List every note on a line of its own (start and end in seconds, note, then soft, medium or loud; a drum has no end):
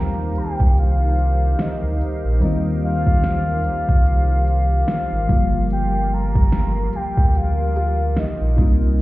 0.00 0.32 D#2 loud
0.00 2.37 D#3 medium
0.00 2.37 G3 medium
0.00 2.38 A#3 medium
0.00 2.39 C4 medium
0.00 5.26 D#4 medium
0.00 2.39 F4 medium
0.00 8.54 G4 medium
0.00 5.26 A#4 medium
0.00 5.25 C5 medium
0.00 8.54 F5 medium
0.00 0.40 A#5 loud
0.36 0.46 C2 medium
0.36 0.78 G5 loud
0.36 closed hi-hat medium
0.60 1.56 C2 loud
0.60 kick loud
0.77 1.63 F5 loud
0.77 closed hi-hat medium
1.19 closed hi-hat medium
1.59 1.69 D2 soft
1.59 2.43 D#5 loud
1.59 snare loud
1.59 closed hi-hat medium
1.83 1.99 D2 loud
2.01 closed hi-hat medium
2.25 2.40 A#1 medium
2.40 3.61 D#2 loud
2.40 5.25 D#3 medium
2.40 5.25 G3 medium
2.40 5.26 A#3 medium
2.40 5.26 C4 medium
2.40 3.69 A#4 medium
2.40 2.81 D#5 loud
2.40 closed hi-hat medium
2.45 5.27 F4 medium
2.85 4.44 F5 loud
3.07 kick loud
3.24 snare loud
3.24 closed hi-hat medium
3.64 3.75 C2 soft
3.64 closed hi-hat medium
3.89 4.84 C2 medium
3.89 kick loud
4.06 closed hi-hat medium
4.48 5.67 F5 loud
4.48 closed hi-hat medium
4.88 snare loud
4.88 closed hi-hat medium
5.12 5.28 G#1 medium
5.28 6.90 G1 medium
5.28 8.55 D3 medium
5.28 8.53 F3 medium
5.28 8.54 G3 medium
5.28 8.54 A#3 medium
5.28 9.02 F4 medium
5.28 9.02 A#4 medium
5.28 kick loud
5.28 closed hi-hat medium
5.32 8.56 F4 medium
5.70 6.15 G5 loud
5.70 closed hi-hat medium
6.14 6.97 A#5 loud
6.35 kick loud
6.52 snare loud
6.52 closed hi-hat medium
6.93 7.03 D2 soft
6.93 7.38 G5 loud
6.93 closed hi-hat medium
7.18 8.13 D2 medium
7.18 kick loud
7.35 8.20 F5 loud
7.35 closed hi-hat medium
7.76 8.95 G4 medium
7.76 closed hi-hat medium
8.17 8.27 A#1 soft
8.17 9.00 D#5 loud
8.17 snare loud
8.17 closed hi-hat medium
8.41 8.57 A#1 medium
8.57 9.02 C2 loud
8.57 9.02 G3 medium
8.57 9.02 A#3 medium
8.57 9.02 C4 medium
8.57 9.02 D#4 medium
8.57 9.02 F5 loud
8.57 kick loud
8.57 closed hi-hat medium
8.61 9.02 F4 medium